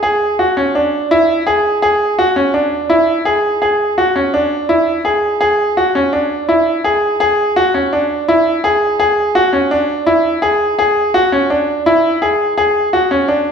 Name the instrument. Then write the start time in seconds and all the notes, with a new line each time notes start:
grand piano
0.03 G#4
0.39 F#4
0.57 C#4
0.75 D4
1.11 E4
1.47 G#4
1.82 G#4
2.19 F#4
2.36 C#4
2.54 D4
2.90 E4
3.25 G#4
3.62 G#4
3.98 F#4
4.16 C#4
4.34 D4
4.69 E4
5.05 G#4
5.41 G#4
5.77 F#4
5.95 C#4
6.13 D4
6.49 E4
6.84 G#4
7.20 G#4
7.56 F#4
7.74 C#4
7.93 D4
8.28 E4
8.64 G#4
9.00 G#4
9.35 F#4
9.53 C#4
9.71 D4
10.06 E4
10.42 G#4
10.79 G#4
11.14 F#4
11.32 C#4
11.50 D4
11.86 E4
12.22 G#4
12.58 G#4
12.93 F#4
13.11 C#4
13.28 D4